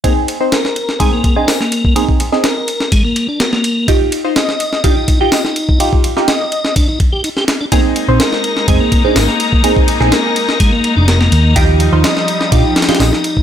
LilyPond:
<<
  \new Staff \with { instrumentName = "Synth stab" } { \time 4/4 \key ees \major \tempo 4 = 125 <c' ees' aes'>8. <c' ees' c''>16 r4 <c' ees' aes'>8 r16 <c' ees' aes'>8 r8. | <c' ees' aes'>8. <c' ees' aes'>16 r2. | <ees' f' g'>8. <ees' f' c''>16 r4 <ees' f' g'>8 r16 <ees' f' g'>8 r8. | <ees' f' g'>8. <ees' f' g'>16 r2. |
<c' ees' aes'>8. <c' ees' c''>16 r4 <c' ees' aes'>8 r16 <c' ees' aes'>8 r8. | <c' ees' aes'>8. <c' ees' aes'>16 r2. | <ees' f' g'>8. <ees' f' c''>16 r4 <ees' f' g'>8 r16 <ees' f' g'>8 r8. | }
  \new Staff \with { instrumentName = "Tonewheel organ" } { \time 4/4 \key ees \major bes16 r8. bes'4 aes16 bes8 d'16 bes'16 bes8. | bes16 r8. bes'4 aes16 bes8 d'16 bes'16 bes8. | ees'16 r8. ees''4 d'16 ees'8 g'16 ees''16 ees'8. | ees'16 r8. ees''4 d'16 ees'16 r16 g'16 ees'16 g'16 r16 d'16 |
bes16 r8. bes'4 aes16 bes8 d'16 bes'16 bes8. | bes16 r8. bes'4 aes16 bes8 d'16 bes'16 bes8. | ees'16 r8. ees''4 d'16 ees'8 g'16 ees''16 ees'8. | }
  \new Staff \with { instrumentName = "String section" } { \clef bass \time 4/4 \key ees \major << { r1 | r1 | r1 | r1 |
ees'1~ | ees'1~ | ees'1 | } \\ { r1 | r1 | r1 | r1 |
<aes bes>1~ | <aes bes>1 | <f g>1 | } >> }
  \new Staff \with { instrumentName = "Picked electric bass" } { \clef bass \time 4/4 \key ees \major r1 | r1 | r1 | r1 |
r8. bes,,16 r4 f,,16 r8. aes,,16 r8. | r8. bes,,16 r4. r16 f,,8. ees,8~ | ees,8. ees,16 r4 bes,,16 r8. bes,,16 r8. | }
  \new DrumStaff \with { instrumentName = "Drums" } \drummode { \time 4/4 <bd cymr>8 cymr8 <cymr sn>16 sn16 cymr16 sn16 <bd cymr>8 <bd cymr>8 <hho sn>16 sn16 cymr16 bd16 | cymr16 bd16 cymr16 sn16 <cymr sn>8 cymr16 sn16 <bd cymr>8 cymr8 <cymr sn>16 sn16 cymr8 | <bd cymr>8 cymr8 <cymr sn>16 sn16 cymr16 sn16 <bd cymr>8 <bd cymr>8 <hho sn>16 sn16 cymr16 bd16 | cymr16 bd16 cymr16 sn16 <cymr sn>8 cymr16 sn16 <bd cymr>8 <bd cymr>8 cymr16 sn16 <cymr sn>8 |
<bd cymr>8 cymr8 <cymr sn>16 sn16 cymr16 sn16 <bd cymr>8 <bd cymr>8 <hho sn>16 sn16 cymr16 bd16 | cymr16 bd16 cymr16 sn16 <cymr sn>8 cymr16 sn16 <bd cymr>8 cymr8 <cymr sn>16 sn16 cymr8 | <bd cymr>8 cymr8 <cymr sn>16 sn16 cymr16 sn16 <bd cymr>8 <cymr sn>32 <cymr sn>32 <cymr sn>32 <cymr sn>32 <hho sn>16 sn16 cymr16 bd16 | }
>>